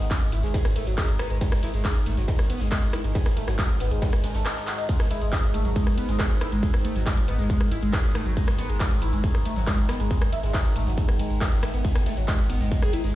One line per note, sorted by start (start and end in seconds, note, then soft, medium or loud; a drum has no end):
0.00 0.10 G#1 medium
0.00 4.88 G#2 medium
0.00 4.88 D#3 medium
0.00 0.07 G#3 medium
0.00 snare medium
0.10 0.18 G#3 medium
0.10 kick loud
0.10 snare loud
0.10 clap loud
0.10 closed hi-hat medium
0.10 ride medium
0.22 0.32 G#1 medium
0.22 closed hi-hat medium
0.32 0.43 G#1 loud
0.32 0.37 E4 medium
0.32 closed hi-hat medium
0.32 open hi-hat loud
0.43 0.54 G#1 medium
0.43 0.54 G#3 medium
0.43 snare soft
0.43 closed hi-hat medium
0.54 0.61 G#4 medium
0.54 kick loud
0.54 closed hi-hat medium
0.54 closed hi-hat loud
0.54 ride medium
0.65 0.76 G#1 medium
0.65 cross-stick medium
0.65 closed hi-hat soft
0.65 closed hi-hat medium
0.76 0.83 A3 medium
0.76 closed hi-hat medium
0.76 open hi-hat loud
0.87 0.98 G#1 medium
0.87 0.91 F#3 medium
0.87 closed hi-hat medium
0.97 1.05 G#3 medium
0.97 kick loud
0.97 cross-stick medium
0.97 snare loud
0.97 clap loud
0.97 closed hi-hat loud
0.97 closed hi-hat medium
0.97 ride medium
1.09 1.19 G#1 medium
1.09 closed hi-hat soft
1.19 1.30 B3 medium
1.19 cross-stick loud
1.19 closed hi-hat medium
1.19 open hi-hat loud
1.30 1.41 G#1 medium
1.30 1.37 G#3 medium
1.30 closed hi-hat medium
1.41 1.48 G#3 medium
1.41 kick loud
1.41 closed hi-hat medium
1.41 ride medium
1.52 1.63 G#1 medium
1.52 cross-stick loud
1.52 snare soft
1.52 closed hi-hat medium
1.63 1.67 E4 medium
1.63 snare medium
1.63 closed hi-hat medium
1.63 open hi-hat loud
1.74 1.85 G#1 medium
1.74 1.84 G#3 medium
1.74 closed hi-hat soft
1.84 1.92 G#4 medium
1.84 kick loud
1.84 snare loud
1.84 clap loud
1.84 closed hi-hat medium
1.84 ride medium
1.95 2.06 G#1 medium
1.95 closed hi-hat soft
1.95 closed hi-hat medium
2.06 2.17 G#1 loud
2.06 2.13 A3 medium
2.06 open hi-hat medium
2.06 open hi-hat loud
2.17 2.28 G#1 medium
2.17 2.22 F#3 medium
2.17 snare soft
2.17 closed hi-hat medium
2.28 2.35 G#3 medium
2.28 kick loud
2.28 closed hi-hat medium
2.28 ride medium
2.39 2.50 G#1 medium
2.39 cross-stick medium
2.39 closed hi-hat medium
2.50 2.60 B3 medium
2.50 closed hi-hat medium
2.50 open hi-hat loud
2.61 2.71 G#1 medium
2.61 2.68 G#3 medium
2.61 snare medium
2.61 closed hi-hat medium
2.71 2.79 G#3 medium
2.71 kick loud
2.71 cross-stick medium
2.71 snare loud
2.71 clap loud
2.71 closed hi-hat medium
2.71 ride medium
2.82 2.93 G#1 medium
2.82 closed hi-hat medium
2.93 2.98 E4 medium
2.93 cross-stick loud
2.93 snare soft
2.93 closed hi-hat medium
2.93 open hi-hat loud
3.04 3.15 G#1 medium
3.04 3.15 G#3 medium
3.04 closed hi-hat medium
3.14 3.22 G#4 medium
3.14 kick loud
3.14 closed hi-hat medium
3.14 ride medium
3.26 3.37 G#1 medium
3.26 cross-stick medium
3.26 closed hi-hat medium
3.26 closed hi-hat soft
3.36 3.44 A3 medium
3.36 closed hi-hat medium
3.36 open hi-hat loud
3.48 3.58 G#1 medium
3.48 3.52 F#3 medium
3.48 cross-stick medium
3.48 snare medium
3.48 closed hi-hat medium
3.58 3.66 G#3 medium
3.58 kick loud
3.58 snare loud
3.58 clap loud
3.58 closed hi-hat medium
3.58 ride medium
3.69 3.80 G#1 medium
3.69 closed hi-hat medium
3.80 3.91 G#1 loud
3.80 3.91 B3 medium
3.80 snare medium
3.80 closed hi-hat medium
3.80 open hi-hat loud
3.91 4.02 G#1 medium
3.91 3.98 G#3 medium
3.91 closed hi-hat medium
4.02 4.09 G#3 medium
4.02 kick loud
4.02 snare loud
4.02 closed hi-hat medium
4.02 ride medium
4.13 4.24 G#1 medium
4.13 cross-stick medium
4.13 closed hi-hat medium
4.13 closed hi-hat soft
4.23 4.31 G#3 medium
4.23 snare loud
4.23 closed hi-hat medium
4.23 open hi-hat loud
4.35 4.45 G#1 medium
4.35 4.45 A3 medium
4.35 snare loud
4.35 closed hi-hat medium
4.45 4.50 G#3 medium
4.45 cross-stick medium
4.45 snare loud
4.45 clap loud
4.45 closed hi-hat medium
4.45 ride medium
4.56 snare loud
4.56 closed hi-hat medium
4.67 4.78 F#3 medium
4.67 snare soft
4.67 clap loud
4.67 closed hi-hat medium
4.67 open hi-hat loud
4.78 4.89 D#4 medium
4.78 closed hi-hat medium
4.89 13.15 G#2 medium
4.89 13.15 D#3 medium
4.89 4.96 G#3 medium
4.89 kick loud
4.89 closed hi-hat loud
4.89 closed hi-hat medium
4.89 ride medium
5.00 5.11 G#1 medium
5.00 cross-stick medium
5.00 snare soft
5.00 closed hi-hat medium
5.10 5.15 E4 medium
5.10 snare medium
5.10 closed hi-hat medium
5.10 open hi-hat loud
5.22 5.32 G#1 medium
5.22 5.32 G#3 medium
5.22 closed hi-hat medium
5.32 5.39 G#4 medium
5.32 kick loud
5.32 snare loud
5.32 clap loud
5.32 closed hi-hat medium
5.32 ride medium
5.43 5.53 G#1 medium
5.43 closed hi-hat medium
5.43 closed hi-hat soft
5.54 5.64 G#1 loud
5.54 5.61 A3 medium
5.54 open hi-hat loud
5.54 open hi-hat medium
5.65 5.76 G#1 medium
5.65 5.69 F#3 medium
5.65 snare soft
5.65 closed hi-hat medium
5.76 5.83 G#3 medium
5.76 kick loud
5.76 closed hi-hat medium
5.76 ride medium
5.87 5.97 G#1 medium
5.87 cross-stick medium
5.87 closed hi-hat medium
5.98 6.08 B3 medium
5.98 closed hi-hat medium
5.98 open hi-hat loud
6.09 6.19 G#1 medium
6.09 6.16 G#3 medium
6.09 snare medium
6.09 closed hi-hat medium
6.19 6.26 G#3 medium
6.19 kick loud
6.19 cross-stick medium
6.19 snare loud
6.19 clap loud
6.19 closed hi-hat medium
6.19 ride medium
6.30 6.41 G#1 medium
6.30 closed hi-hat medium
6.41 6.45 E4 medium
6.41 cross-stick medium
6.41 snare soft
6.41 closed hi-hat medium
6.41 open hi-hat loud
6.52 6.63 G#1 medium
6.52 6.62 G#3 medium
6.52 closed hi-hat medium
6.63 6.70 G#4 medium
6.63 kick loud
6.63 closed hi-hat medium
6.63 closed hi-hat loud
6.63 ride medium
6.74 6.84 G#1 medium
6.74 cross-stick medium
6.74 closed hi-hat medium
6.74 closed hi-hat soft
6.84 6.92 A3 medium
6.84 closed hi-hat medium
6.84 open hi-hat loud
6.96 7.06 G#1 medium
6.96 7.00 F#3 medium
6.96 snare medium
6.96 closed hi-hat medium
7.06 7.13 G#3 medium
7.06 kick loud
7.06 snare loud
7.06 clap loud
7.06 closed hi-hat medium
7.06 ride medium
7.17 7.27 G#1 medium
7.17 closed hi-hat medium
7.28 7.38 G#1 loud
7.28 7.38 B3 medium
7.28 closed hi-hat medium
7.28 open hi-hat loud
7.39 7.50 G#1 medium
7.39 7.46 G#3 medium
7.39 snare soft
7.39 closed hi-hat medium
7.50 7.57 G#3 medium
7.50 kick loud
7.50 closed hi-hat medium
7.50 closed hi-hat loud
7.50 ride medium
7.60 7.71 G#1 medium
7.60 cross-stick medium
7.60 closed hi-hat soft
7.60 closed hi-hat medium
7.71 7.76 E4 medium
7.71 closed hi-hat medium
7.71 open hi-hat loud
7.82 7.93 G#1 medium
7.82 7.93 G#3 medium
7.82 closed hi-hat medium
7.93 8.00 G#4 medium
7.93 kick loud
7.93 cross-stick medium
7.93 snare loud
7.93 clap loud
7.93 closed hi-hat loud
7.93 closed hi-hat medium
7.93 ride medium
8.04 8.15 G#1 medium
8.04 closed hi-hat medium
8.15 8.22 A3 medium
8.15 cross-stick medium
8.15 closed hi-hat medium
8.15 open hi-hat loud
8.26 8.37 G#1 medium
8.26 8.30 F#3 medium
8.26 closed hi-hat medium
8.37 8.44 G#3 medium
8.37 kick loud
8.37 closed hi-hat medium
8.37 ride medium
8.48 8.58 G#1 medium
8.48 cross-stick medium
8.48 snare soft
8.48 closed hi-hat medium
8.58 8.69 B3 medium
8.58 snare medium
8.58 closed hi-hat medium
8.58 open hi-hat loud
8.69 8.80 G#1 medium
8.69 8.76 G#3 medium
8.69 closed hi-hat medium
8.80 8.87 G#3 medium
8.80 kick loud
8.80 snare loud
8.80 clap loud
8.80 closed hi-hat medium
8.80 ride medium
8.91 9.01 G#1 medium
8.91 closed hi-hat medium
8.91 closed hi-hat soft
9.02 9.12 G#1 loud
9.02 9.06 E4 medium
9.02 open hi-hat medium
9.02 open hi-hat loud
9.13 9.23 G#1 medium
9.13 9.23 G#3 medium
9.13 snare soft
9.13 closed hi-hat medium
9.24 9.31 G#4 medium
9.24 kick loud
9.24 closed hi-hat medium
9.24 ride medium
9.35 9.45 G#1 medium
9.35 cross-stick medium
9.35 closed hi-hat medium
9.45 9.53 A3 medium
9.45 closed hi-hat medium
9.45 open hi-hat loud
9.56 9.67 G#1 medium
9.56 9.61 F#3 medium
9.56 snare soft
9.56 closed hi-hat medium
9.67 9.74 G#3 medium
9.67 kick loud
9.67 cross-stick medium
9.67 snare loud
9.67 clap loud
9.67 closed hi-hat medium
9.67 ride medium
9.78 9.89 G#1 medium
9.78 closed hi-hat medium
9.88 9.99 B3 medium
9.88 cross-stick medium
9.88 snare soft
9.88 closed hi-hat medium
9.88 open hi-hat loud
10.00 10.11 G#1 medium
10.00 10.07 G#3 medium
10.00 closed hi-hat medium
10.11 10.18 G#3 medium
10.11 kick loud
10.11 closed hi-hat medium
10.11 closed hi-hat loud
10.11 ride medium
10.22 10.32 G#1 medium
10.22 cross-stick loud
10.22 closed hi-hat medium
10.32 10.37 E4 medium
10.32 closed hi-hat medium
10.32 open hi-hat loud
10.43 10.54 G#1 medium
10.43 10.54 G#3 medium
10.43 snare medium
10.43 closed hi-hat medium
10.54 10.61 G#4 medium
10.54 kick loud
10.54 snare loud
10.54 clap loud
10.54 closed hi-hat medium
10.54 closed hi-hat loud
10.54 ride medium
10.65 10.75 G#1 medium
10.65 closed hi-hat medium
10.76 10.86 G#1 loud
10.76 10.83 A3 medium
10.76 closed hi-hat medium
10.76 open hi-hat loud
10.87 10.98 G#1 medium
10.87 10.91 F#3 medium
10.87 snare medium
10.87 closed hi-hat medium
10.98 11.05 G#3 medium
10.98 kick loud
10.98 closed hi-hat medium
10.98 ride medium
11.08 11.19 G#1 medium
11.08 cross-stick medium
11.08 closed hi-hat soft
11.08 closed hi-hat medium
11.19 11.26 G#3 loud
11.19 closed hi-hat medium
11.19 open hi-hat loud
11.30 11.41 G#1 medium
11.30 11.37 G#3 medium
11.30 closed hi-hat soft
11.41 11.45 G#3 medium
11.41 kick loud
11.41 cross-stick medium
11.41 snare loud
11.41 clap loud
11.41 closed hi-hat loud
11.41 closed hi-hat medium
11.41 ride medium
11.52 11.63 G#1 medium
11.52 closed hi-hat medium
11.63 11.73 A3 medium
11.63 cross-stick loud
11.63 closed hi-hat medium
11.63 open hi-hat loud
11.74 11.84 G#1 medium
11.74 11.81 B3 medium
11.74 closed hi-hat medium
11.85 11.92 G#4 medium
11.85 kick loud
11.85 closed hi-hat medium
11.85 ride medium
11.95 12.06 G#1 medium
11.95 cross-stick loud
11.95 snare soft
11.95 closed hi-hat medium
12.06 12.13 A3 medium
12.06 snare soft
12.06 closed hi-hat medium
12.06 open hi-hat loud
12.17 12.28 G#1 medium
12.17 12.21 F#3 medium
12.17 closed hi-hat medium
12.27 12.35 G#3 medium
12.27 kick loud
12.27 snare loud
12.27 clap loud
12.27 closed hi-hat medium
12.27 ride medium
12.39 12.49 G#1 medium
12.39 closed hi-hat medium
12.39 closed hi-hat soft
12.50 12.60 G#1 loud
12.50 12.60 B3 medium
12.50 open hi-hat medium
12.50 open hi-hat loud
12.61 12.71 G#1 medium
12.61 12.68 G#3 medium
12.61 snare soft
12.61 closed hi-hat medium
12.72 12.79 G#3 medium
12.72 kick loud
12.72 closed hi-hat medium
12.72 closed hi-hat loud
12.72 ride medium
12.82 12.93 G#1 medium
12.82 12.93 G#4 loud
12.82 cross-stick medium
12.82 closed hi-hat medium
12.93 12.98 E4 medium
12.93 closed hi-hat medium
12.93 open hi-hat loud
13.04 13.15 G#1 medium
13.04 13.15 G#3 medium
13.04 snare medium
13.04 closed hi-hat medium